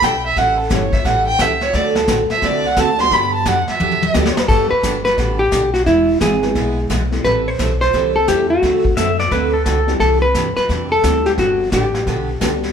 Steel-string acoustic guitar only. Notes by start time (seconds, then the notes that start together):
0.02 G3 B3 D4 A4
0.37 E3 G3 C#4 E4 A4
0.70 E3 G3 C#4 E4 A4
1.05 E3 G3 C#4 E4 A4
1.39 E3 G3 C#4 E4 A4
1.74 D3 A3 C4 F#4 A4
2.08 D3 A3 C4 F#4 A4
2.42 D3 A3 C4 F#4 A4
2.77 D3 A3 C4 F#4 A4
3.11 D3 F#3 B3 D4 G4
3.45 D3 F#3 B3 D4 G4
3.80 D3 F#3 B3 D4 G4
4.14 D3 F#3 B3 D4 G4
4.49 D3 G3 B3 D4 G4
4.83 D3 G3 B3 D4 G4
5.18 D3 G3 B3 D4 G4
5.51 D3 G3 B3 D4 G4
5.87 E3 G#3 B3 E4 G#4
6.21 E3 G#3 B3 E4 G#4
6.55 E3 G#3 B3 E4 G#4
6.90 E3 G#3 B3 E4 G#4
7.24 E3 G3 C4 E4 A4
7.59 E3 G3 C4 E4 A4
7.93 E3 G3 C4 E4 A4
8.28 E3 G3 C4 E4 A4
8.62 D3 A3 C4 F#4 A4
8.97 D3 A3 C4 F#4 A4
9.32 D3 A3 C4 F#4 A4
9.66 D3 A3 C4 F#4 A4
10.01 C3 E3 D4 G4
10.35 C3 E3 D4 G4
10.70 C3 E3 D4 G4
11.04 C3 E3 D4 G4
11.38 D3 F#3 B3 D4 G4
11.72 D3 F#3 B3 D4 G4
12.07 D3 F#3 B3 D4 G4
12.41 D3 F#3 B3 D4 G4